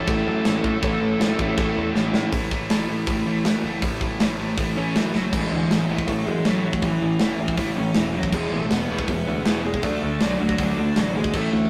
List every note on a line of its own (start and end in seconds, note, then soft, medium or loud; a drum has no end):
0.00 1.92 A4 medium
0.00 1.92 A5 medium
0.07 0.20 A1 loud
0.07 0.45 A2 loud
0.07 0.45 E3 loud
0.07 0.46 A3 loud
0.07 0.46 C#4 loud
0.07 0.47 E4 loud
0.07 kick loud
0.07 crash medium
0.27 0.40 F#2 medium
0.45 0.58 A1 loud
0.45 0.63 A2 medium
0.45 0.63 E3 medium
0.45 0.64 A3 medium
0.45 0.65 C#4 loud
0.45 0.65 E4 loud
0.45 snare loud
0.45 crash medium
0.63 0.81 A2 medium
0.63 0.76 A2 medium
0.63 0.81 E3 medium
0.63 0.82 A3 medium
0.63 0.82 C#4 medium
0.63 0.83 E4 loud
0.63 kick medium
0.82 0.95 A1 loud
0.82 1.18 A2 loud
0.82 1.19 E3 loud
0.82 1.20 A3 loud
0.82 1.20 C#4 loud
0.82 1.21 E4 loud
0.82 kick loud
0.82 crash medium
1.01 1.14 A1 medium
1.19 1.33 A1 medium
1.19 1.38 A2 medium
1.19 1.38 E3 medium
1.19 1.39 A3 medium
1.19 1.39 C#4 medium
1.19 1.40 E4 loud
1.19 snare loud
1.19 crash medium
1.39 1.51 A1 medium
1.39 1.56 A2 medium
1.39 1.57 E3 medium
1.39 1.57 A3 medium
1.39 1.58 C#4 loud
1.39 1.58 E4 loud
1.39 kick medium
1.57 1.70 A1 medium
1.57 1.93 A2 loud
1.57 1.93 E3 loud
1.57 1.94 A3 loud
1.57 1.94 C#4 loud
1.57 1.95 E4 loud
1.57 kick loud
1.57 crash medium
1.76 1.89 E2 medium
1.94 2.08 A1 medium
1.94 2.11 A2 loud
1.94 2.12 E3 medium
1.94 2.12 A3 loud
1.94 2.13 C#4 loud
1.94 2.13 E4 loud
1.94 snare medium
2.12 2.31 A2 medium
2.12 2.26 A2 medium
2.12 2.31 E3 medium
2.12 2.31 A3 medium
2.12 2.32 C#4 medium
2.12 2.32 E4 loud
2.12 snare loud
2.32 2.69 A1 medium
2.32 2.51 A2 medium
2.32 2.52 E3 loud
2.32 2.53 A3 loud
2.32 kick loud
2.32 open hi-hat medium
2.51 2.70 A2 medium
2.51 2.71 E3 medium
2.51 2.71 A3 loud
2.51 kick medium
2.70 2.88 A1 loud
2.70 2.87 A2 medium
2.70 2.88 E3 loud
2.70 2.89 A3 loud
2.70 snare loud
2.70 open hi-hat medium
2.88 3.07 A1 medium
2.88 3.07 A2 medium
2.88 3.08 E3 medium
2.88 3.08 A3 loud
3.06 3.25 A1 medium
3.06 3.26 A2 medium
3.06 3.27 E3 loud
3.06 3.28 A3 loud
3.06 kick loud
3.06 open hi-hat medium
3.26 3.44 A1 medium
3.26 3.45 A2 medium
3.26 3.45 E3 medium
3.26 3.46 A3 medium
3.45 3.63 F#2 medium
3.45 3.63 A2 medium
3.45 3.64 E3 medium
3.45 3.65 A3 loud
3.45 snare loud
3.45 open hi-hat medium
3.63 3.82 F#1 medium
3.63 3.81 A2 medium
3.63 3.82 E3 medium
3.63 3.82 A3 loud
3.82 4.19 A1 loud
3.82 4.00 A2 loud
3.82 4.01 E3 loud
3.82 4.01 A3 loud
3.82 kick loud
3.82 open hi-hat medium
4.01 4.18 A2 medium
4.01 4.19 E3 medium
4.01 4.19 A3 loud
4.01 kick medium
4.19 4.38 A1 loud
4.19 4.37 A2 loud
4.19 4.38 E3 loud
4.19 4.38 A3 loud
4.19 snare loud
4.19 open hi-hat medium
4.38 4.57 A1 medium
4.38 4.56 A2 medium
4.38 4.57 E3 medium
4.38 4.57 A3 loud
4.57 4.76 A1 medium
4.57 4.75 A2 medium
4.57 4.76 E3 medium
4.57 4.76 A3 loud
4.57 kick loud
4.57 open hi-hat medium
4.76 4.95 A1 medium
4.76 4.93 A2 medium
4.76 4.94 E3 medium
4.76 4.94 A3 loud
4.76 4.94 C#4 medium
4.76 4.94 C#5 medium
4.94 5.14 F#2 medium
4.94 5.12 A2 loud
4.94 5.13 E3 loud
4.94 5.13 E3 medium
4.94 5.13 A3 loud
4.94 5.14 E4 medium
4.94 snare loud
4.94 open hi-hat medium
5.13 5.32 F#1 medium
5.13 5.31 A2 medium
5.13 5.32 E3 medium
5.13 5.32 F#3 medium
5.13 5.32 A3 medium
5.13 5.33 F#4 medium
5.13 snare medium
5.32 5.45 A1 medium
5.32 5.51 A2 medium
5.32 5.52 E3 medium
5.32 6.04 G#3 medium
5.32 5.52 A3 loud
5.32 5.53 C#4 loud
5.32 5.53 E4 loud
5.32 6.07 G#4 medium
5.32 kick loud
5.32 crash loud
5.51 5.64 D2 medium
5.51 5.69 A2 medium
5.51 5.70 E3 medium
5.51 5.70 A3 medium
5.51 5.71 C#4 medium
5.51 5.71 E4 loud
5.70 5.83 A1 medium
5.70 5.89 A2 medium
5.70 5.89 E3 medium
5.70 5.90 A3 medium
5.70 5.90 C#4 medium
5.70 5.90 E4 medium
5.70 snare loud
5.70 open hi-hat medium
5.89 6.02 A1 medium
5.89 6.06 A2 loud
5.89 6.07 E3 loud
5.89 6.07 A3 loud
5.89 6.07 C#4 loud
5.89 6.08 E4 loud
5.98 kick medium
6.07 6.21 A1 medium
6.07 6.25 A2 medium
6.07 6.26 E3 medium
6.07 6.26 A3 medium
6.07 6.26 C#4 medium
6.07 6.28 E4 loud
6.07 6.26 A4 loud
6.07 kick medium
6.07 open hi-hat medium
6.26 6.40 F#2 medium
6.26 6.43 A2 medium
6.26 6.44 E3 loud
6.26 6.45 G#3 medium
6.26 6.44 A3 loud
6.26 6.45 C#4 loud
6.26 6.46 E4 loud
6.26 6.46 G#4 medium
6.44 6.61 A2 medium
6.44 6.72 A2 medium
6.44 6.62 E3 medium
6.44 6.64 F#3 medium
6.44 6.62 A3 medium
6.44 6.62 C#4 loud
6.44 6.63 E4 loud
6.44 6.64 F#4 medium
6.44 snare loud
6.44 open hi-hat medium
6.62 6.81 A2 medium
6.62 6.82 E3 medium
6.62 6.82 A3 medium
6.62 6.83 C#4 medium
6.62 6.83 E4 medium
6.62 6.84 F#4 medium
6.66 6.83 F#3 medium
6.73 kick medium
6.82 6.95 A1 medium
6.82 7.00 A2 medium
6.82 7.01 E3 medium
6.82 7.55 E3 medium
6.82 7.01 A3 loud
6.82 7.01 C#4 loud
6.82 7.02 E4 loud
6.82 7.55 E4 medium
6.82 kick medium
6.82 open hi-hat medium
7.01 7.15 A1 medium
7.01 7.19 A2 medium
7.01 7.20 E3 medium
7.01 7.20 A3 medium
7.01 7.20 C#4 medium
7.01 7.22 E4 medium
7.19 7.33 F#1 loud
7.19 7.38 A2 medium
7.19 7.39 E3 medium
7.19 7.39 A3 medium
7.19 7.39 C#4 medium
7.19 7.41 E4 medium
7.19 snare loud
7.19 open hi-hat medium
7.39 7.52 A1 medium
7.39 7.56 A2 loud
7.39 7.57 E3 loud
7.39 7.58 A3 loud
7.39 7.58 C#4 loud
7.39 7.58 E4 loud
7.48 kick medium
7.57 7.71 A1 medium
7.57 7.75 A2 medium
7.57 7.75 E3 medium
7.57 7.76 A3 medium
7.57 7.76 C#4 loud
7.57 7.77 E4 loud
7.57 kick loud
7.57 open hi-hat medium
7.76 7.90 A1 medium
7.76 7.93 A2 medium
7.76 7.94 E3 loud
7.76 7.95 A3 loud
7.76 7.95 C#4 medium
7.76 7.96 C#4 medium
7.76 7.95 E4 loud
7.76 7.96 C#5 medium
7.94 8.21 E1 medium
7.94 8.12 A2 medium
7.94 8.13 E3 medium
7.94 8.14 E3 medium
7.94 8.13 A3 loud
7.94 8.14 C#4 loud
7.94 8.15 E4 medium
7.94 8.14 E4 loud
7.94 snare loud
7.94 open hi-hat medium
8.13 8.32 A2 medium
8.13 8.31 E3 medium
8.13 8.32 F#3 medium
8.13 8.32 A3 medium
8.13 8.33 C#4 medium
8.13 8.33 E4 medium
8.13 8.33 F#4 medium
8.23 kick medium
8.32 8.46 E1 loud
8.32 8.50 E2 medium
8.32 8.51 B2 medium
8.32 8.50 E3 medium
8.32 8.51 G#3 medium
8.32 8.60 G#3 medium
8.32 8.51 B3 loud
8.32 8.52 E4 loud
8.32 8.61 G#4 loud
8.32 kick medium
8.32 crash medium
8.51 8.65 A1 medium
8.51 8.69 E2 medium
8.51 8.69 B2 medium
8.51 8.69 E3 medium
8.51 8.69 G#3 medium
8.51 8.70 B3 medium
8.51 8.70 E4 medium
8.61 8.66 A3 medium
8.61 8.65 A4 medium
8.70 8.84 E1 medium
8.70 8.88 E2 medium
8.70 8.88 B2 medium
8.70 8.87 E3 medium
8.70 8.89 G#3 medium
8.70 8.89 B3 medium
8.70 8.98 B3 medium
8.70 8.89 E4 medium
8.70 8.98 B4 medium
8.70 snare loud
8.70 open hi-hat medium
8.89 9.03 E1 medium
8.89 9.07 E2 medium
8.89 9.07 B2 medium
8.89 9.06 E3 medium
8.89 9.07 G#3 loud
8.89 9.08 B3 loud
8.89 9.08 E4 loud
8.99 9.62 B3 medium
8.99 9.61 B4 loud
8.99 kick medium
9.08 9.21 E1 medium
9.08 9.25 E2 medium
9.08 9.26 B2 medium
9.08 9.25 E3 medium
9.08 9.26 G#3 medium
9.08 9.26 B3 medium
9.08 9.27 E4 loud
9.08 kick loud
9.08 open hi-hat medium
9.26 9.40 D2 medium
9.26 9.44 E2 medium
9.26 9.44 B2 medium
9.26 9.44 E3 medium
9.26 9.45 G#3 loud
9.26 9.46 B3 loud
9.26 9.46 E4 loud
9.45 9.63 E2 medium
9.45 9.72 E2 medium
9.45 9.64 B2 loud
9.45 9.62 E3 medium
9.45 9.63 G#3 medium
9.45 9.64 B3 medium
9.45 9.64 E4 loud
9.45 snare loud
9.45 open hi-hat medium
9.63 9.82 E2 medium
9.63 9.82 B2 medium
9.63 9.82 E3 medium
9.63 9.82 G#3 medium
9.63 9.83 G#3 medium
9.63 9.83 B3 medium
9.63 9.83 E4 medium
9.63 9.84 G#4 loud
9.74 kick medium
9.82 9.96 D2 medium
9.82 10.00 D3 medium
9.82 10.01 A3 loud
9.82 10.20 A3 medium
9.82 10.01 D4 medium
9.82 10.01 F#4 loud
9.82 10.19 A4 loud
9.82 kick medium
9.82 open hi-hat medium
10.01 10.15 D2 medium
10.01 10.20 D3 medium
10.01 10.21 A3 medium
10.01 10.21 D4 medium
10.01 10.21 F#4 loud
10.20 10.34 B1 loud
10.20 10.38 D3 medium
10.20 10.57 F#3 medium
10.20 10.39 A3 medium
10.20 10.39 D4 medium
10.20 10.39 F#4 medium
10.20 10.58 F#4 medium
10.20 snare loud
10.20 open hi-hat medium
10.39 10.53 D2 medium
10.39 10.57 D3 medium
10.39 10.58 A3 loud
10.39 10.58 D4 loud
10.39 10.58 F#4 loud
10.49 kick medium
10.58 10.71 D2 medium
10.58 10.76 D3 medium
10.58 10.77 F#3 medium
10.58 10.78 A3 medium
10.58 10.78 D4 medium
10.58 10.78 F#4 medium
10.58 10.79 F#4 loud
10.58 kick loud
10.58 open hi-hat medium
10.77 10.90 D2 medium
10.77 10.94 D3 medium
10.77 10.96 A3 medium
10.77 10.96 D4 medium
10.77 10.95 D4 loud
10.77 10.96 F#4 loud
10.77 10.96 D5 medium
10.95 11.22 A1 medium
10.95 11.13 D3 medium
10.95 11.15 F#3 medium
10.95 11.15 A3 loud
10.95 11.15 D4 medium
10.95 11.15 F#4 loud
10.95 11.15 F#4 medium
10.95 snare loud
10.95 open hi-hat medium
11.15 11.33 D3 medium
11.15 11.34 G#3 medium
11.15 11.34 A3 medium
11.15 11.33 D4 medium
11.15 11.34 F#4 medium
11.15 11.35 G#4 medium
11.24 kick medium
11.33 11.47 A1 medium
11.33 11.52 A2 medium
11.33 11.53 E3 medium
11.33 11.53 A3 loud
11.33 11.70 A3 medium
11.33 11.54 C#4 loud
11.33 11.54 E4 loud
11.33 11.70 A4 medium
11.33 kick medium
11.33 crash medium
11.52 11.65 D2 medium
11.52 11.70 A2 medium
11.52 11.70 E3 medium
11.52 11.70 A3 medium
11.52 11.70 C#4 medium
11.52 11.70 E4 loud